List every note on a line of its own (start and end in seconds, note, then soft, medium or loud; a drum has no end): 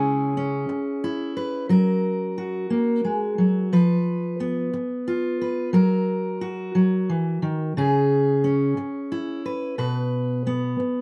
0.00 0.68 C#3 medium
0.00 1.66 G#3 soft
0.00 0.37 C#4 soft
0.00 1.03 E4 medium
0.00 1.36 G#4 medium
0.37 3.76 C#4 soft
0.69 muted steel-string acoustic guitar stroke medium
1.04 1.66 E4 medium
1.37 1.66 B4 medium
1.69 2.70 F#3 medium
1.69 3.68 A#4 medium
2.38 3.68 F#4 medium
2.70 3.04 A#3 medium
3.05 3.38 G#3 medium
3.38 3.72 F#3 medium
3.73 4.72 F3 medium
3.73 5.40 B4 medium
4.40 5.74 B3 medium
4.74 muted steel-string acoustic guitar stroke medium
5.08 5.70 F4 medium
5.42 5.70 B4 soft
5.73 6.74 F#3 medium
5.73 7.72 A#4 medium
6.41 7.72 F#4 medium
6.75 7.08 F#3 medium
7.09 7.42 E3 medium
7.42 7.76 D#3 medium
7.77 8.76 C#3 medium
7.77 9.45 G#4 medium
8.44 9.74 C#4 medium
8.77 muted steel-string acoustic guitar stroke medium
9.12 9.74 E4 medium
9.46 9.75 B4 medium
9.78 10.79 B2 medium
9.78 11.01 B4 medium
10.47 11.01 B3 medium
10.80 muted steel-string acoustic guitar stroke medium